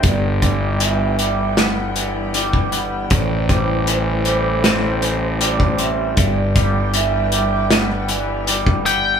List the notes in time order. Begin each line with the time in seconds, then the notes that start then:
Already playing: E3 G3 E4 G5
0.03 G1 G2 G3 B4 D5, kick, closed hi-hat
0.42 G3, kick, closed hi-hat
0.80 E3 E5, closed hi-hat
1.19 G3, closed hi-hat
1.57 B3, snare, closed hi-hat
1.96 E3 D5, closed hi-hat
2.34 G3, closed hi-hat
2.53 kick
2.72 B3, closed hi-hat
3.10 A1 A2 A3 C5 D5, kick, closed hi-hat
3.49 G3 C5, kick, closed hi-hat
3.87 E3, closed hi-hat
4.25 G3 C5, closed hi-hat
4.64 C4, snare, closed hi-hat
5.02 E3, closed hi-hat
5.41 G3 D5, closed hi-hat
5.60 kick
5.78 C4 E5, closed hi-hat
6.17 G1 G2 G3 B4 D5 G5, kick, closed hi-hat
6.56 G3, kick, closed hi-hat
6.94 E3 E5, closed hi-hat
7.32 G3, closed hi-hat
7.71 B3, snare, closed hi-hat
8.09 E3 D5, closed hi-hat
8.47 G3, closed hi-hat
8.67 kick
8.86 B3 G5, closed hi-hat